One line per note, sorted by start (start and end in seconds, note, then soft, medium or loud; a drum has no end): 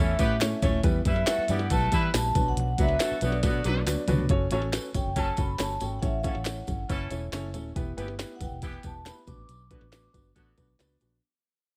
0.00 0.15 E2 medium
0.00 0.15 E3 loud
0.00 0.13 A3 medium
0.00 0.13 C#4 medium
0.00 0.15 C#4 loud
0.00 0.14 E4 medium
0.00 0.13 A4 medium
0.00 0.15 A4 loud
0.00 0.14 C#5 medium
0.00 0.58 E5 medium
0.19 0.53 A2 loud
0.19 0.34 A3 medium
0.19 0.36 B3 medium
0.19 0.35 C#4 medium
0.19 0.34 E4 medium
0.19 0.37 G4 medium
0.19 0.35 A4 medium
0.19 0.37 B4 loud
0.19 0.35 C#5 medium
0.19 kick medium
0.19 closed hi-hat medium
0.19 tambourine medium
0.41 0.56 A3 loud
0.41 0.57 C#4 medium
0.41 0.57 E4 medium
0.41 0.57 A4 medium
0.41 0.56 C#5 loud
0.41 snare loud
0.41 clap loud
0.41 closed hi-hat medium
0.41 tambourine loud
0.41 muted conga soft
0.41 high conga medium
0.62 0.79 D#1 loud
0.62 0.78 A3 loud
0.62 0.78 C#4 loud
0.62 0.78 E4 loud
0.62 0.78 A4 loud
0.62 0.78 C#5 loud
0.62 kick medium
0.62 closed hi-hat medium
0.62 tambourine medium
0.62 high conga medium
0.62 low conga medium
0.84 1.01 E2 loud
0.84 0.99 G3 loud
0.84 0.99 B3 loud
0.84 0.99 E4 loud
0.84 1.00 G4 loud
0.84 0.99 B4 loud
0.84 kick loud
0.84 closed hi-hat medium
0.84 tambourine soft
0.84 muted conga soft
0.84 low conga medium
1.05 1.23 F#2 medium
1.05 1.23 G3 medium
1.05 1.21 G3 medium
1.05 1.22 B3 medium
1.05 1.23 E4 medium
1.05 1.21 E4 medium
1.05 1.22 G4 medium
1.05 1.23 B4 loud
1.05 1.22 B4 medium
1.05 1.26 E5 medium
1.05 kick medium
1.05 closed hi-hat medium
1.05 tambourine soft
1.05 high conga medium
1.16 snare soft
1.27 1.43 G3 medium
1.27 1.45 A3 loud
1.27 1.43 B3 medium
1.27 1.43 E4 medium
1.27 1.45 F#4 medium
1.27 1.43 G4 medium
1.27 1.45 A4 loud
1.27 1.43 B4 medium
1.27 1.50 E5 medium
1.27 snare loud
1.27 clap loud
1.27 closed hi-hat loud
1.27 tambourine loud
1.39 muted fingered electric bass stroke soft
1.48 1.72 G2 loud
1.48 1.67 E3 medium
1.48 1.65 G3 loud
1.48 1.67 B3 medium
1.48 1.65 B3 medium
1.48 1.65 E4 medium
1.48 1.67 G4 medium
1.48 1.65 G4 medium
1.48 1.65 D5 loud
1.48 1.71 F#5 loud
1.48 closed hi-hat medium
1.48 tambourine medium
1.48 muted conga soft
1.48 low conga medium
1.59 snare soft
1.70 1.88 B1 medium
1.70 1.86 G3 medium
1.70 1.88 A3 loud
1.70 1.86 B3 medium
1.70 1.86 E4 medium
1.70 1.88 F#4 loud
1.70 1.86 G4 medium
1.70 1.88 A4 loud
1.70 1.86 B4 medium
1.70 1.93 A5 loud
1.70 kick medium
1.70 closed hi-hat loud
1.70 tambourine medium
1.70 muted conga soft
1.92 2.09 E3 loud
1.92 2.08 G3 medium
1.92 2.10 G3 loud
1.92 2.08 B3 medium
1.92 2.08 E4 medium
1.92 2.10 E4 loud
1.92 2.08 G4 medium
1.92 2.08 B4 medium
1.92 2.10 B4 loud
1.92 2.15 B5 loud
1.92 kick medium
1.92 closed hi-hat medium
1.92 tambourine medium
1.92 muted conga soft
2.14 2.31 A#1 loud
2.14 2.29 G3 medium
2.14 2.29 B3 medium
2.14 2.29 E4 medium
2.14 2.29 G4 medium
2.14 2.29 B4 medium
2.14 2.48 A5 loud
2.14 snare loud
2.14 clap loud
2.14 closed hi-hat medium
2.14 tambourine loud
2.14 muted conga soft
2.14 high conga medium
2.35 2.52 B1 loud
2.35 2.70 F#3 medium
2.35 2.70 B3 medium
2.35 2.70 D4 medium
2.35 2.70 F#4 medium
2.35 2.70 B4 medium
2.35 kick loud
2.35 closed hi-hat medium
2.35 tambourine medium
2.35 muted conga soft
2.35 high conga medium
2.35 low conga medium
2.48 2.58 F#5 medium
2.57 2.74 B1 loud
2.57 2.69 F#5 loud
2.57 closed hi-hat medium
2.57 muted conga soft
2.57 low conga medium
2.78 2.96 C#2 medium
2.78 2.96 F#3 medium
2.78 2.94 F#3 medium
2.78 2.94 B3 medium
2.78 2.94 D4 medium
2.78 2.96 D4 medium
2.78 2.94 F#4 medium
2.78 2.96 B4 loud
2.78 2.94 B4 medium
2.78 3.24 E5 loud
2.78 kick medium
2.78 closed hi-hat medium
2.78 tambourine soft
2.78 muted conga soft
2.78 high conga medium
2.88 snare soft
2.99 3.16 F#3 medium
2.99 3.17 A3 medium
2.99 3.16 B3 medium
2.99 3.16 D4 medium
2.99 3.17 F#4 medium
2.99 3.16 F#4 medium
2.99 3.17 A4 loud
2.99 3.16 B4 medium
2.99 snare loud
2.99 clap medium
2.99 closed hi-hat loud
2.99 tambourine medium
2.99 muted conga soft
3.12 muted fingered electric bass stroke soft
3.21 3.45 B1 loud
3.21 3.39 D3 medium
3.21 3.37 F#3 medium
3.21 3.39 B3 medium
3.21 3.37 B3 medium
3.21 3.37 D4 medium
3.21 3.39 F#4 medium
3.21 3.37 F#4 medium
3.21 3.37 B4 loud
3.21 4.06 D5 medium
3.21 closed hi-hat medium
3.21 tambourine medium
3.21 low conga medium
3.32 snare soft
3.43 3.61 B2 loud
3.43 3.61 D3 medium
3.43 3.59 F#3 medium
3.43 3.61 B3 medium
3.43 3.59 B3 medium
3.43 3.59 D4 medium
3.43 3.61 F#4 loud
3.43 3.59 F#4 medium
3.43 3.59 B4 medium
3.43 kick loud
3.43 snare medium
3.43 closed hi-hat loud
3.43 tambourine medium
3.43 muted conga soft
3.43 high conga soft
3.64 3.82 B1 loud
3.64 3.82 F#3 medium
3.64 3.81 F#3 medium
3.64 3.81 B3 medium
3.64 3.82 D4 medium
3.64 3.81 D4 medium
3.64 3.81 F#4 medium
3.64 3.82 B4 loud
3.64 3.81 B4 medium
3.64 closed hi-hat medium
3.64 high tom medium
3.64 tambourine medium
3.64 muted conga soft
3.86 3.95 D2 loud
3.86 4.02 F#3 medium
3.86 4.02 B3 medium
3.86 4.02 D4 medium
3.86 4.02 F#4 medium
3.86 4.02 B4 loud
3.86 clap loud
3.86 closed hi-hat medium
3.86 tambourine loud
3.86 high conga medium
4.08 4.17 C#2 medium
4.08 4.24 F#3 loud
4.08 4.24 B3 loud
4.08 4.24 D4 loud
4.08 4.24 F#4 loud
4.08 4.24 B4 loud
4.08 closed hi-hat medium
4.08 floor tom loud
4.08 tambourine medium
4.08 muted conga soft
4.08 high conga medium
4.08 low conga medium
4.18 4.28 D2 medium
4.18 floor tom loud
4.29 4.47 F#1 loud
4.29 4.45 C#4 loud
4.29 4.46 F#4 loud
4.29 4.45 A4 loud
4.29 4.46 C#5 loud
4.29 kick loud
4.29 closed hi-hat medium
4.29 muted conga soft
4.51 4.77 A1 medium
4.51 4.60 F#3 medium
4.51 4.60 C#4 medium
4.51 4.67 C#4 loud
4.51 4.67 F#4 loud
4.51 4.60 A4 medium
4.51 4.67 A4 loud
4.51 4.67 C#5 loud
4.51 closed hi-hat medium
4.51 tambourine soft
4.51 muted conga soft
4.51 high conga medium
4.62 snare soft
4.73 4.88 C#4 medium
4.73 4.89 F#4 medium
4.73 4.88 A4 medium
4.73 4.89 B4 loud
4.73 snare loud
4.73 clap medium
4.73 closed hi-hat loud
4.73 tambourine medium
4.73 muted conga soft
4.94 5.03 G1 loud
4.94 5.10 C#4 medium
4.94 5.10 F#4 medium
4.94 5.10 A4 medium
4.94 5.10 C#5 medium
4.94 5.15 G5 medium
4.94 kick medium
4.94 closed hi-hat medium
4.94 tambourine medium
4.94 muted conga soft
4.94 low conga medium
5.05 5.31 F#1 medium
5.16 5.47 F#3 medium
5.16 5.47 C#4 medium
5.16 5.32 C#4 medium
5.16 5.32 F#4 medium
5.16 5.47 A4 loud
5.16 5.32 A4 medium
5.16 5.32 C#5 medium
5.16 5.39 A5 loud
5.16 kick medium
5.16 closed hi-hat medium
5.16 tambourine medium
5.16 muted conga soft
5.16 high conga soft
5.37 5.55 F#1 loud
5.37 5.53 C#4 medium
5.37 5.53 F#4 medium
5.37 5.53 A4 medium
5.37 5.53 C#5 medium
5.37 5.61 B5 loud
5.37 kick medium
5.37 closed hi-hat medium
5.37 tambourine medium
5.37 muted conga soft
5.58 5.77 G1 medium
5.58 5.74 C#4 loud
5.58 5.74 F#4 medium
5.58 5.74 A4 medium
5.58 5.74 C#5 loud
5.58 5.81 A5 loud
5.58 snare loud
5.58 clap loud
5.58 closed hi-hat medium
5.58 tambourine loud
5.58 muted conga soft
5.58 high conga medium
5.80 5.98 G#1 medium
5.80 5.97 C#4 medium
5.80 5.97 F#4 medium
5.80 5.97 A4 medium
5.80 5.97 C#5 medium
5.80 5.97 G5 medium
5.80 closed hi-hat medium
5.80 tambourine medium
5.80 muted conga soft
5.80 high conga medium
5.80 low conga medium
5.99 6.28 A1 loud
5.99 6.18 C#4 loud
5.99 6.18 E4 medium
5.99 6.18 A4 medium
5.99 6.18 C#5 loud
5.99 6.04 F#5 medium
5.99 kick loud
5.99 closed hi-hat medium
5.99 tambourine soft
5.99 muted conga soft
6.05 6.19 E5 medium
6.20 6.39 C#4 loud
6.20 6.39 A4 medium
6.20 6.26 F5 medium
6.20 tambourine soft
6.24 6.34 E3 medium
6.24 6.34 C#4 medium
6.24 6.40 E4 medium
6.24 6.34 A4 medium
6.24 6.39 C#5 loud
6.24 6.86 F#5 medium
6.24 kick medium
6.24 closed hi-hat medium
6.24 high conga medium
6.35 6.61 A1 medium
6.35 snare soft
6.45 6.61 C#4 medium
6.45 6.61 E4 medium
6.45 6.61 A4 medium
6.45 6.61 C#5 medium
6.45 snare loud
6.45 clap medium
6.45 closed hi-hat medium
6.45 tambourine medium
6.45 muted conga soft
6.67 6.85 G1 medium
6.67 6.83 C#4 medium
6.67 6.83 E4 medium
6.67 6.83 A4 medium
6.67 6.83 C#5 medium
6.67 kick medium
6.67 closed hi-hat medium
6.67 tambourine medium
6.67 muted conga soft
6.67 low conga medium
6.89 7.07 F#1 medium
6.89 7.20 E3 loud
6.89 7.20 C#4 medium
6.89 7.05 C#4 medium
6.89 7.05 E4 medium
6.89 7.05 A4 medium
6.89 7.20 A4 loud
6.89 7.05 C#5 loud
6.89 kick medium
6.89 closed hi-hat medium
6.89 tambourine medium
6.89 high conga soft
7.11 7.28 E1 loud
7.11 7.26 C#4 medium
7.11 7.26 E4 medium
7.11 7.26 A4 medium
7.11 7.27 C#5 loud
7.11 closed hi-hat medium
7.11 tambourine medium
7.11 muted conga soft
7.33 7.55 F#1 loud
7.33 7.48 C#4 loud
7.33 7.48 E4 loud
7.33 7.48 A4 loud
7.33 7.48 C#5 loud
7.33 snare loud
7.33 clap medium
7.33 closed hi-hat medium
7.33 tambourine loud
7.33 muted conga soft
7.33 high conga medium
7.54 7.72 D#1 medium
7.54 7.69 C#4 medium
7.54 7.69 E4 medium
7.54 7.70 A4 medium
7.54 7.69 C#5 loud
7.54 closed hi-hat medium
7.54 tambourine medium
7.54 muted conga soft
7.54 high conga medium
7.54 low conga medium
7.76 7.93 E1 loud
7.76 7.91 B3 loud
7.76 7.91 E4 loud
7.76 7.91 G4 loud
7.76 7.91 B4 loud
7.76 kick loud
7.76 closed hi-hat medium
7.76 tambourine soft
7.97 8.23 G1 medium
7.97 8.07 E3 medium
7.97 8.07 B3 medium
7.97 8.13 B3 loud
7.97 8.13 E4 loud
7.97 8.13 G4 loud
7.97 8.07 G4 medium
7.97 8.13 B4 loud
7.97 closed hi-hat medium
7.97 tambourine soft
7.97 muted conga soft
7.97 high conga medium
8.08 snare soft
8.19 8.34 B3 medium
8.19 8.35 E4 medium
8.19 8.34 G4 medium
8.19 8.35 B4 loud
8.19 snare loud
8.19 clap medium
8.19 closed hi-hat loud
8.19 tambourine medium
8.35 8.42 F#5 medium
8.41 8.49 F#1 medium
8.41 8.57 B3 medium
8.41 8.57 E4 medium
8.41 8.57 G4 medium
8.41 8.57 B4 medium
8.41 8.87 G5 medium
8.41 kick medium
8.41 closed hi-hat medium
8.41 tambourine medium
8.41 muted conga soft
8.41 low conga medium
8.52 8.77 E1 medium
8.62 8.94 E3 medium
8.62 8.78 B3 medium
8.62 8.94 B3 medium
8.62 8.78 E4 medium
8.62 8.78 G4 medium
8.62 8.94 G4 loud
8.62 8.78 B4 medium
8.62 kick medium
8.62 closed hi-hat medium
8.62 tambourine medium
8.62 muted conga soft
8.62 high conga soft
8.83 9.10 E1 medium
8.83 9.00 B3 medium
8.83 9.00 E4 medium
8.83 9.00 G4 medium
8.83 9.00 B4 medium
8.83 9.08 A5 medium
8.83 kick medium
8.83 closed hi-hat medium
8.83 tambourine medium
9.05 9.21 B3 medium
9.05 9.21 E4 medium
9.05 9.21 G4 medium
9.05 9.21 B4 loud
9.05 9.29 B5 loud
9.05 snare loud
9.05 clap medium
9.05 closed hi-hat medium
9.05 tambourine medium
9.05 muted conga soft
9.05 high conga medium
9.27 9.36 B1 medium
9.27 9.62 B3 medium
9.27 9.62 D4 medium
9.27 9.62 F#4 medium
9.27 9.62 B4 medium
9.27 10.98 D6 loud
9.27 kick loud
9.27 closed hi-hat medium
9.27 tambourine medium
9.27 muted conga soft
9.27 high conga medium
9.27 low conga medium
9.38 9.47 A1 medium
9.49 9.75 B1 loud
9.49 closed hi-hat medium
9.49 tambourine soft
9.49 muted conga soft
9.71 9.80 D3 medium
9.71 9.80 B3 medium
9.71 9.86 B3 medium
9.71 9.86 D4 medium
9.71 9.86 F#4 medium
9.71 9.80 F#4 medium
9.71 9.86 B4 loud
9.71 kick medium
9.71 closed hi-hat medium
9.71 muted conga soft
9.71 high conga medium
9.81 10.07 A1 medium
9.81 snare soft
9.92 10.08 B3 medium
9.92 10.08 D4 medium
9.92 10.08 F#4 medium
9.92 10.08 B4 loud
9.92 snare loud
9.92 clap medium
9.92 closed hi-hat medium
9.92 tambourine medium
10.13 10.31 G1 medium
10.13 10.29 B3 medium
10.13 10.29 D4 medium
10.13 10.29 F#4 medium
10.13 10.29 B4 medium
10.13 kick medium
10.13 closed hi-hat medium
10.13 tambourine medium
10.13 muted conga soft
10.13 low conga medium
10.36 10.53 A1 medium
10.36 10.67 D3 medium
10.36 10.67 B3 medium
10.36 10.51 B3 medium
10.36 10.51 D4 medium
10.36 10.51 F#4 medium
10.36 10.67 F#4 loud
10.36 10.51 B4 loud
10.36 kick medium
10.36 closed hi-hat medium
10.36 tambourine medium
10.36 muted conga soft
10.36 high conga soft
10.57 10.75 B1 medium
10.57 10.73 B3 medium
10.57 10.73 D4 medium
10.57 10.73 F#4 medium
10.57 10.73 B4 medium
10.57 kick medium
10.57 closed hi-hat medium
10.57 tambourine medium
10.57 muted conga soft
10.79 10.97 C#2 medium
10.79 10.95 B3 loud
10.79 10.95 D4 loud
10.79 10.95 F#4 loud
10.79 10.95 B4 loud
10.79 snare loud
10.79 clap medium
10.79 closed hi-hat medium
10.79 tambourine medium
10.79 muted conga soft
10.79 high conga medium
11.00 11.19 A#1 medium
11.00 11.16 B3 medium
11.00 11.17 D4 medium
11.00 11.17 F#4 medium
11.00 11.17 B4 medium
11.00 closed hi-hat medium
11.00 tambourine medium
11.00 muted conga soft
11.00 high conga medium
11.00 low conga medium